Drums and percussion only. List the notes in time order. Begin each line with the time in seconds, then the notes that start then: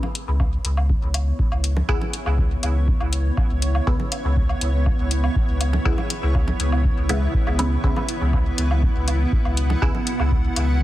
0.03 low conga, low woodblock
0.15 closed hi-hat
0.40 kick, low woodblock
0.65 closed hi-hat
0.77 low woodblock
0.90 kick
1.14 closed hi-hat, low woodblock
1.39 kick
1.52 low woodblock
1.64 closed hi-hat
1.77 low conga
1.89 kick, low woodblock
2.01 low conga
2.13 closed hi-hat
2.26 low woodblock
2.38 kick
2.63 closed hi-hat, low woodblock
2.88 kick
3.00 low woodblock
3.13 closed hi-hat
3.37 kick, low woodblock
3.62 closed hi-hat
3.75 low woodblock
3.87 kick
4.00 low conga
4.12 closed hi-hat, low woodblock
4.37 kick
4.49 low woodblock
4.61 closed hi-hat
4.86 kick, low woodblock
5.11 closed hi-hat
5.24 low woodblock
5.36 kick
5.61 closed hi-hat, low woodblock
5.73 low conga
5.85 kick
5.98 low conga, low woodblock
6.10 closed hi-hat
6.35 kick, low woodblock
6.48 low conga
6.60 closed hi-hat
6.72 low woodblock
6.85 kick
7.09 closed hi-hat, low woodblock
7.34 kick
7.47 low woodblock
7.59 closed hi-hat
7.84 kick
7.96 low conga, low woodblock
8.09 closed hi-hat
8.33 kick, low woodblock
8.58 closed hi-hat
8.71 low woodblock
8.83 kick
9.08 closed hi-hat, low woodblock
9.32 kick
9.45 low woodblock
9.57 closed hi-hat
9.70 low conga
9.82 kick, low woodblock
9.95 low conga
10.07 closed hi-hat
10.20 low woodblock
10.32 kick
10.56 closed hi-hat, low woodblock